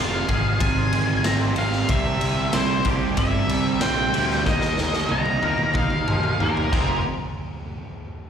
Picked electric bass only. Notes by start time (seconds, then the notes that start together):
Already playing: F1
0.29 G#1
0.61 G#1
0.93 G#1
1.25 G#1
1.56 G#1
1.90 C2
2.20 C2
2.54 C2
2.86 C2
3.17 G1
3.51 C2
3.84 A#1
4.16 D2
4.46 D#2
4.79 D#2
5.11 C2
5.43 D#2
5.75 D#2
6.08 D#2
6.40 D#2
6.73 F1